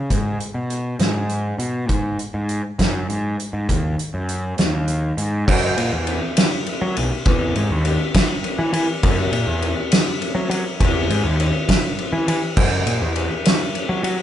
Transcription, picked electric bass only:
0.10 0.36 G#2 medium
0.54 0.94 B2 medium
0.99 1.52 G#2 medium
1.58 1.89 B2 medium
1.89 2.15 G#2 medium
2.34 2.60 G#2 medium
2.79 3.06 F#2 medium
3.09 3.35 G#2 medium
3.53 3.67 G#2 medium
3.69 3.95 D#2 medium
4.14 4.53 F#2 medium
4.59 5.11 D#2 medium
5.17 5.44 G#2 medium
5.48 5.74 F#2 loud
5.77 5.90 A#2 loud
5.93 6.19 E2 medium
6.82 6.95 F#3 medium
6.97 7.10 B1 loud
7.26 7.52 E2 loud
7.56 7.69 G#2 medium
7.70 7.96 D#2 medium
8.59 8.72 E3 loud
8.73 8.86 E3 loud
9.04 9.29 F#2 loud
9.32 9.45 A#2 medium
9.47 9.73 E2 medium
10.35 10.48 F#3 loud
10.50 10.63 F#3 loud
10.80 11.06 E2 loud
11.10 11.23 G#2 medium
11.24 11.50 D#2 medium
12.12 12.26 E3 loud
12.28 12.41 E3 loud
12.57 12.83 F#2 loud
12.86 12.99 A#2 medium
13.02 13.27 E2 medium
13.89 14.02 F#3 loud
14.03 14.16 F#3 loud

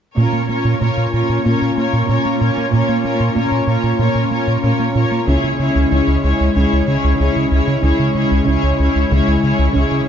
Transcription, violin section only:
0.17 0.48 A#4 soft
0.17 0.48 C#5 soft
0.49 0.80 A#4 soft
0.49 0.81 C#5 soft
0.81 1.13 A#4 soft
0.81 1.13 C#5 soft
1.15 1.44 A#4 soft
1.15 1.44 C#5 soft
1.45 1.77 A#4 soft
1.45 1.76 C#5 soft
1.78 2.09 A#4 soft
1.78 2.09 C#5 soft
2.10 2.40 A#4 soft
2.10 2.39 C#5 soft
2.40 2.72 A#4 soft
2.40 2.72 C#5 soft
2.73 3.04 A#4 soft
2.73 3.04 C#5 soft
3.05 3.35 A#4 soft
3.05 3.36 C#5 soft
3.37 3.67 A#4 soft
3.37 3.67 C#5 soft
3.68 3.99 A#4 soft
3.68 3.99 C#5 soft
4.00 4.30 A#4 soft
4.00 4.30 C#5 soft
4.31 4.62 A#4 soft
4.31 4.62 C#5 soft
4.63 4.94 A#4 soft
4.63 4.94 C#5 soft
4.95 5.27 A#4 soft
4.95 5.27 C#5 soft
5.28 5.58 G#4 soft
5.28 5.58 C#5 soft
5.59 5.91 G#4 soft
5.59 5.90 C#5 soft
5.92 6.22 G#4 soft
5.92 6.22 C#5 soft
6.23 6.54 G#4 soft
6.23 6.54 C#5 soft
6.55 6.86 G#4 soft
6.55 6.86 C#5 soft
6.87 7.18 G#4 soft
6.87 7.18 C#5 soft
7.19 7.50 G#4 soft
7.19 7.51 C#5 soft
7.51 7.82 G#4 soft
7.51 7.82 C#5 soft
7.83 8.15 G#4 soft
7.83 8.15 C#5 soft
8.16 8.47 G#4 soft
8.16 8.47 C#5 soft
8.48 8.79 G#4 soft
8.48 8.78 C#5 soft
8.80 9.10 G#4 soft
8.80 9.10 C#5 soft
9.11 9.42 G#4 soft
9.11 9.42 C#5 soft
9.43 9.73 G#4 soft
9.43 9.74 C#5 soft
9.75 10.06 G#4 soft
9.75 10.06 C#5 soft

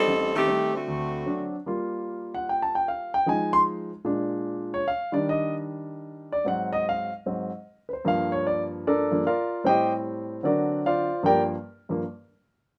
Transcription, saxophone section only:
0.00 0.32 G3 medium
0.00 0.31 C4 medium
0.00 0.32 D#4 medium
0.00 0.32 A4 loud
0.36 0.72 D#3 medium
0.36 0.72 A3 medium
0.36 0.72 C4 medium
0.36 0.72 G4 loud
0.75 1.50 D3 medium
0.75 1.50 A3 medium
0.75 1.50 C4 medium
0.75 1.50 F#4 medium

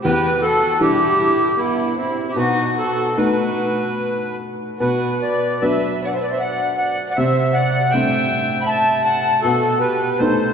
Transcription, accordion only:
0.05 0.44 B4 loud
0.42 0.81 A4 loud
0.81 1.60 G4 medium
1.57 1.96 E4 medium
1.97 2.31 E4 medium
2.30 2.36 G4 medium
2.37 2.78 F#4 medium
2.78 3.18 A4 medium
3.17 4.35 B4 medium
4.80 5.23 B4 medium
5.22 5.63 D5 medium
5.61 6.06 E5 medium
6.06 6.14 F#5 medium
6.14 6.23 E5 medium
6.23 6.32 D5 medium
6.31 6.40 E5 medium
6.40 6.76 F#5 medium
6.78 7.08 F#5 medium
7.10 7.17 F#5 medium
7.16 7.56 E5 loud
7.53 7.94 F#5 loud
7.90 8.63 G5 loud
8.61 8.68 B5 medium
8.67 9.02 A5 loud
9.04 9.40 A5 medium
9.42 9.78 A4 medium
9.80 10.21 B4 medium
10.19 10.54 C5 medium

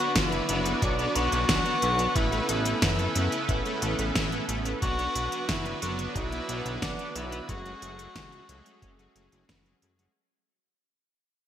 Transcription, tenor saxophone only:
0.00 0.12 F#4 loud
0.16 0.84 E4 medium
0.83 1.17 D4 medium
1.16 2.17 F#4 loud
2.16 2.49 E4 loud
2.49 4.45 E4 medium
4.82 5.51 F#4 loud
5.49 5.82 E4 loud
5.83 5.97 F#4 loud
6.16 6.78 E4 loud
6.83 7.18 D4 medium
7.16 7.51 E4 loud
7.49 9.49 F#4 loud

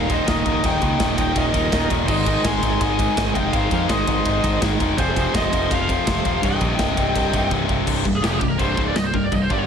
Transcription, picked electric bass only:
0.00 0.19 D#1 medium
0.28 0.41 D#1 medium
0.46 0.59 C#1 medium
0.64 0.77 D#1 loud
0.82 0.95 C#2 medium
1.00 1.13 D#1 medium
1.18 1.31 D#1 medium
1.36 1.50 D#1 loud
1.55 1.68 D#1 medium
1.73 1.86 D#1 medium
1.91 2.09 D#1 medium
2.09 2.36 G#1 loud
2.45 2.58 G#1 medium
2.63 2.76 G#1 medium
2.81 3.08 G#1 loud
3.17 3.31 G#1 medium
3.36 3.49 F1 medium
3.54 3.67 G#1 medium
3.71 3.85 F2 medium
3.90 4.03 G#1 loud
4.08 4.21 G#1 loud
4.26 4.39 G#1 medium
4.44 4.57 G#1 medium
4.62 4.75 G#1 medium
4.81 4.94 E1 medium
4.99 5.25 F1 medium
5.34 5.48 F1 loud
5.53 5.66 F1 loud
5.71 5.98 F1 medium
6.08 6.21 F1 medium
6.25 6.38 D#1 medium
6.43 6.56 C1 medium
6.61 6.74 A#1 medium
6.79 6.92 C1 medium
6.97 7.11 C1 loud
7.16 7.29 C1 loud
7.34 7.47 C1 medium
7.52 7.65 C1 medium
7.69 7.83 C1 medium
7.88 8.04 C1 medium
8.06 8.22 C1 medium
8.23 8.40 F1 medium
8.41 8.58 C1 medium
8.60 8.76 C1 loud
8.78 8.94 C#1 medium
8.96 9.13 C1 medium
9.14 9.31 C1 medium
9.32 9.49 C1 medium
9.51 9.67 G1 medium

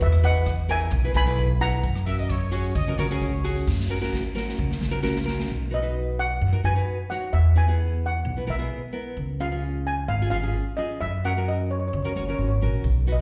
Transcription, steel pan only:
0.02 0.23 B4 medium
0.02 0.23 E5 medium
0.25 0.67 D#5 medium
0.25 0.71 F#5 loud
0.71 1.13 E5 medium
0.71 1.15 G#5 loud
1.16 1.58 G#5 medium
1.16 1.63 B5 loud
1.61 3.17 F#5 medium
1.61 3.17 A#5 loud
5.74 6.21 D#5 medium
6.19 6.62 F#5 medium
6.65 7.12 G#5 loud
7.10 7.34 F#5 medium
7.33 7.55 E5 medium
7.58 8.04 G#5 medium
8.06 8.51 F#5 medium
8.50 8.92 E5 medium
9.41 9.88 F5 medium
9.87 9.97 G#5 medium
10.08 10.29 F5 medium
10.30 10.79 F5 loud
10.77 10.99 D#5 medium
11.01 11.24 E5 medium
11.25 11.46 F#5 medium
11.48 11.69 D#5 medium
11.71 11.78 C#5 medium
11.79 11.86 C#5 soft
11.88 11.93 C#5 medium
11.95 12.01 C#5 soft
12.03 12.09 C#5 soft
12.12 12.16 C#5 soft
12.17 12.24 C#5 soft
12.27 12.32 C#5 soft
12.35 12.39 C#5 soft
12.40 12.46 C#5 soft
12.49 12.54 C#5 medium
13.12 13.21 D#5 medium

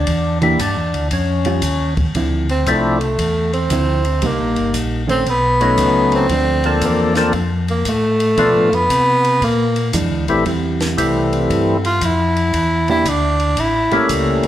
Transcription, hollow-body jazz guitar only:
0.42 0.57 E3 medium
0.42 0.58 A#3 medium
0.42 0.58 D4 medium
0.42 0.58 G4 medium
1.46 1.61 G3 medium
1.46 1.62 C#4 medium
1.46 1.62 F4 medium
2.16 2.46 D3 medium
2.16 2.47 F3 medium
2.16 2.47 C4 soft
2.16 2.47 E4 medium
3.71 4.02 D3 medium
3.71 4.02 F3 soft
3.71 4.03 C4 medium
3.71 4.03 E4 medium
4.22 5.02 G3 medium
4.22 5.03 A#3 medium
4.22 5.03 D#4 medium
5.07 5.24 D#3 medium
5.07 5.24 A3 medium
5.07 5.25 C#4 medium
6.31 6.62 F3 medium
6.31 6.62 A3 soft
6.31 6.62 D4 medium
8.38 8.69 F3 medium
8.38 8.69 A3 medium
8.38 8.70 D4 medium
9.94 10.25 E3 medium
9.94 10.25 G#3 medium
9.94 10.26 D4 medium
10.46 11.91 G3 soft
10.46 11.91 C4 medium
10.46 11.92 E4 medium
12.89 13.04 E3 medium
12.89 13.05 A#3 medium
12.89 13.05 D4 medium
12.89 13.05 G4 medium
13.92 14.08 G3 medium
13.92 14.08 A#3 medium
13.92 14.08 C#4 medium

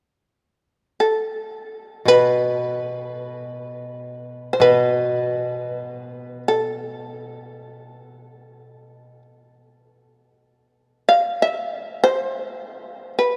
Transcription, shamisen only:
1.00 2.04 A4 soft
2.08 4.50 B4 medium
4.53 4.61 C5 soft
4.62 6.43 B4 medium
6.48 9.22 A4 medium
11.09 11.38 F5 medium
11.42 11.81 E5 medium
11.81 12.00 C5 medium
12.04 13.13 C5 medium
13.19 13.37 B4 medium

